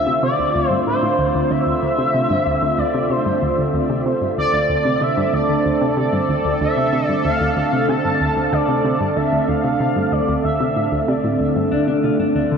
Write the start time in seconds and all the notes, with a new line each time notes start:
Already playing: D3 A3 C4 F4 E5
0.07 C3
0.23 C3 D5
0.39 D2
0.55 D2
0.68 G2 C5
0.87 A2 C5
1.03 A2
1.19 D2
1.35 D2
1.50 D2 E5
1.67 D2
1.82 D2
1.99 C3
2.14 C3
2.30 G2
2.46 D2
2.62 D2
2.78 D2 D5
2.94 C3
3.10 C3 C5
3.26 G2
3.42 D2
3.58 D2
3.74 D2
3.90 C3
4.06 C3
4.22 G2
4.29 A4
4.38 D2 D5
4.53 D2
4.69 D2
4.85 C3
5.01 C3 E5
5.17 G2
5.33 D2 D5
5.49 D2
5.65 D2
5.81 C3
5.97 C3 D5
6.13 G2
6.29 D2
6.45 D2
6.61 D2 E5
6.77 C3
6.93 C3
7.06 G2 D5
7.25 D2 F5
7.41 D2
7.57 D2
7.73 C3
7.89 C3 A5
8.05 G2
8.21 D2
8.37 D2
8.53 D2 D5
8.69 C3
8.85 C3
9.00 G2
9.16 D2 E5
9.33 D2
9.48 D2 F5
9.64 C3
9.80 C3
9.96 G2
10.12 D2 D5
10.28 D2
10.44 D2 E5
10.60 C3
10.76 A2
10.92 D2
11.08 C3 D5
11.24 A2
11.40 D2
11.56 G2
11.72 D2 D4
11.88 C3 D4
12.04 C3 F4
12.20 G2 D4
12.36 D2 D4
12.51 D2 D3